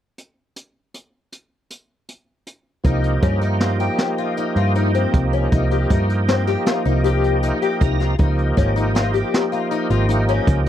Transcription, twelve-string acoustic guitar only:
2.85 3.14 D#4 medium
3.23 3.38 C#4 medium
3.41 3.56 D#4 medium
3.61 3.76 F4 medium
3.80 4.10 G4 medium
4.18 4.33 F4 medium
4.38 4.52 D#4 medium
4.57 4.71 F4 medium
4.76 4.91 D#4 medium
4.95 5.24 C4 medium
5.33 5.48 C#4 medium
5.52 5.67 D#4 medium
5.71 5.86 G4 medium
5.90 6.20 D#4 medium
6.28 6.43 C4 medium
6.47 6.62 G4 medium
6.66 6.81 F4 medium
6.85 7.00 D#4 medium
7.04 7.34 G4 medium
7.43 7.58 D#4 medium
7.62 7.77 G4 medium
7.81 7.96 D#4 medium
8.00 8.15 F4 medium
8.19 8.48 D#4 medium
8.57 8.72 C#4 medium
8.76 8.91 D#4 medium
8.95 9.10 F4 medium
9.14 9.44 G4 medium
9.52 9.67 F4 medium
9.71 9.86 D#4 medium
9.90 10.05 F4 medium
10.09 10.24 D#4 medium
10.29 10.58 C#4 medium

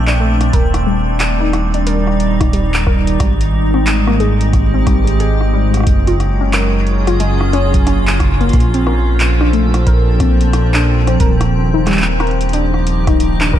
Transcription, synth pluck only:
0.07 0.16 D4 medium
0.20 0.34 A3 medium
0.53 0.73 A#4 medium
0.87 1.06 G3 medium
1.41 1.53 D#4 medium
1.74 1.83 D4 medium
1.87 2.01 A#4 medium
2.41 2.49 D#4 medium
2.53 2.68 G3 medium
2.87 3.06 A#4 medium
3.20 3.40 G3 medium
3.74 3.86 C4 medium
4.07 4.16 A#3 medium
4.20 4.34 G#4 medium
4.74 4.83 C4 medium
4.87 5.01 G3 medium
5.20 5.40 G#4 medium
5.53 5.73 G3 medium
6.07 6.19 F4 medium
6.41 6.49 C#4 medium
6.53 6.68 A#4 medium
7.07 7.16 F4 medium
7.20 7.34 G#3 medium
7.53 7.68 C#4 loud
7.87 7.95 C#4 medium
8.41 8.46 A#3 medium
8.74 8.83 C4 medium
8.87 9.01 A#4 medium
9.41 9.49 D4 medium
9.53 9.68 A3 medium
9.87 10.06 A#4 medium
10.20 10.34 C4 medium
10.74 10.86 D4 medium
11.07 11.16 C4 medium
11.20 11.34 A#4 medium
11.74 11.83 D#4 medium
11.87 12.01 G3 medium
12.20 12.40 A#4 medium
12.53 12.68 D4 medium
13.07 13.19 D#4 medium
13.41 13.49 D4 medium
13.53 13.59 A#4 medium

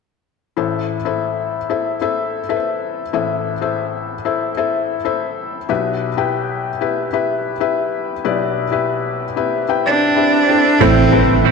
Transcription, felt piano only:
0.57 3.10 A1 medium
0.57 3.10 A2 medium
0.57 0.96 E4 medium
0.57 0.96 A4 medium
0.57 0.96 C5 medium
0.57 0.97 E5 medium
1.05 1.57 E4 medium
1.05 1.57 A4 soft
1.05 1.57 C5 medium
1.05 1.58 E5 medium
1.70 1.96 E4 medium
1.70 1.96 A4 medium
1.70 1.96 C5 medium
1.70 1.96 E5 medium
2.01 2.40 E4 medium
2.01 2.41 A4 medium
2.01 2.41 C5 medium
2.01 2.41 E5 medium
2.49 3.01 E4 medium
2.49 3.01 A4 medium
2.49 2.56 B4 soft
2.49 3.02 E5 medium
2.56 3.05 C5 medium
3.13 5.66 A1 medium
3.13 5.66 A2 medium
3.13 3.52 E4 medium
3.13 3.53 A4 medium
3.13 3.53 C5 medium
3.13 3.53 E5 medium
3.61 4.13 E4 medium
3.61 4.13 A4 medium
3.61 4.14 C5 medium
3.61 4.14 E5 medium
4.25 4.51 E4 medium
4.25 4.51 A4 medium
4.25 4.52 C5 medium
4.25 4.52 E5 medium
4.57 4.96 E4 medium
4.57 4.96 A4 medium
4.57 4.97 C5 medium
4.57 4.97 E5 medium
5.05 5.57 E4 medium
5.05 5.57 A4 medium
5.05 5.57 C5 medium
5.05 5.57 E5 medium
5.69 8.21 B1 medium
5.69 8.21 B2 medium
5.69 6.08 E4 medium
5.69 6.08 G4 medium
5.69 6.08 B4 medium
5.69 6.09 E5 medium
6.17 6.69 E4 medium
6.17 6.69 G4 medium
6.17 6.70 B4 medium
6.17 6.70 G5 medium
6.81 7.07 E4 medium
6.81 7.07 G4 medium
6.81 7.08 B4 medium
6.81 7.08 E5 medium
7.13 7.52 E4 medium
7.13 7.52 G4 medium
7.13 7.52 B4 medium
7.13 7.52 E5 medium
7.60 8.13 E4 medium
7.60 8.13 G4 medium
7.60 8.13 B4 medium
7.60 8.13 E5 medium
8.25 10.45 B1 medium
8.25 10.45 B2 medium
8.25 8.64 E4 medium
8.25 8.64 G4 medium
8.25 8.64 B4 medium
8.25 8.64 D5 medium
8.72 9.24 E4 medium
8.72 9.24 G4 medium
8.72 9.24 B4 medium
8.72 9.25 E5 medium
9.36 9.63 E4 medium
9.36 9.63 G4 medium
9.36 9.63 B4 medium
9.36 9.63 E5 medium
9.68 10.07 E4 medium
9.68 10.08 G4 medium
9.68 10.08 B4 medium
9.68 10.08 G5 medium
10.16 10.47 E4 medium
10.16 10.48 G4 medium
10.16 10.49 B4 medium
10.16 10.47 E5 medium
10.48 10.74 E4 medium
10.48 10.74 A4 medium
10.48 10.75 C5 medium
10.48 10.75 E5 medium
10.80 11.52 A2 medium
10.80 11.06 A3 medium
10.80 11.06 C4 medium
10.80 11.06 E4 medium
10.80 11.07 A4 medium
10.80 11.07 C5 medium
11.11 11.52 A3 medium
11.11 11.52 C4 medium
11.11 11.52 E4 medium
11.11 11.52 A4 medium
11.11 11.19 B4 medium
11.19 11.52 C5 medium

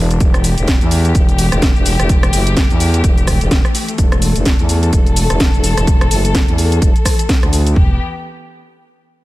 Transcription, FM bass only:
0.00 0.19 E1 loud
0.20 0.56 E1 loud
0.58 0.79 E1 medium
0.81 1.13 E2 loud
1.15 1.50 E1 loud
1.52 1.74 E1 loud
1.76 1.97 E1 medium
1.99 2.31 E1 loud
2.33 2.68 F#1 medium
2.70 3.02 E2 loud
3.04 3.39 E1 loud
3.41 3.63 E1 loud
3.98 4.34 E1 loud
4.36 4.57 E1 medium
4.59 4.91 E2 medium
4.93 5.28 E1 loud
5.30 5.52 E1 loud
5.54 5.75 E1 medium
5.77 6.09 E1 loud
6.11 6.46 F#1 medium
6.48 6.80 E2 loud
6.82 6.93 E1 loud
7.43 7.75 D2 loud
7.76 7.98 E1 loud

